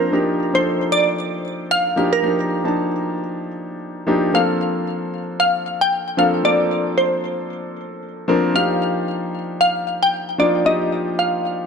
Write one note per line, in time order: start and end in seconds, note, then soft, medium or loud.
0.00 0.12 F3 medium
0.00 0.12 A#3 medium
0.00 0.14 C4 medium
0.00 0.12 D4 medium
0.00 0.13 F4 medium
0.00 0.14 A4 medium
0.00 0.56 A#4 medium
0.00 0.14 C5 medium
0.12 0.44 F3 medium
0.12 0.44 A#3 medium
0.12 0.45 D4 medium
0.12 0.45 D#4 medium
0.12 0.45 G4 medium
0.53 1.37 F3 medium
0.53 1.37 A#3 medium
0.53 1.37 D4 medium
0.53 1.37 D#4 medium
0.53 1.37 A4 medium
0.53 0.93 C5 medium
0.92 1.66 D5 loud
1.71 2.09 F5 loud
1.96 2.18 F3 medium
1.96 2.18 A#3 medium
1.96 2.18 D4 medium
1.96 2.18 D#4 medium
1.96 2.19 G4 medium
2.13 3.13 A#4 medium
2.22 2.55 F3 medium
2.22 2.55 A#3 medium
2.22 2.55 D4 medium
2.22 2.55 D#4 medium
2.22 2.55 G4 medium
2.64 3.47 F3 medium
2.64 3.48 A#3 medium
2.64 3.48 D4 medium
2.64 3.48 D#4 medium
2.64 3.48 A5 medium
4.07 4.28 F3 medium
4.07 4.29 A#3 medium
4.07 4.29 D4 medium
4.07 4.29 D#4 medium
4.07 4.29 G4 loud
4.33 5.18 F3 medium
4.33 5.18 A#3 medium
4.33 5.18 C4 medium
4.33 5.18 D4 medium
4.33 5.19 A4 medium
4.33 5.39 F5 loud
5.40 5.78 F5 loud
5.81 6.15 G5 loud
6.17 6.39 F3 medium
6.17 6.39 A#3 medium
6.17 6.39 C4 medium
6.17 6.39 D4 medium
6.17 6.40 A4 medium
6.17 6.42 F5 loud
6.44 7.29 F3 medium
6.44 7.29 A#3 medium
6.44 7.29 C4 medium
6.44 7.29 D4 medium
6.44 7.29 A4 medium
6.44 6.93 D5 loud
6.98 7.98 C5 medium
8.28 8.50 F3 loud
8.28 8.50 A#3 medium
8.28 8.50 C4 medium
8.28 8.50 D4 medium
8.28 8.50 A#4 loud
8.54 9.39 F3 medium
8.54 9.39 A#3 medium
8.54 9.39 D4 medium
8.54 9.39 D#4 medium
8.54 9.40 G4 medium
8.54 9.60 F5 loud
9.61 9.99 F5 loud
10.03 10.40 G5 loud
10.38 10.60 F3 medium
10.38 10.60 A#3 medium
10.38 10.60 D4 medium
10.38 10.61 D#4 medium
10.38 10.61 F4 medium
10.38 10.63 D5 medium
10.65 11.50 F3 medium
10.65 11.50 A#3 medium
10.65 11.50 D#4 medium
10.65 11.50 F4 medium
10.65 11.50 G4 medium
10.65 11.19 D#5 loud
11.19 11.66 F5 medium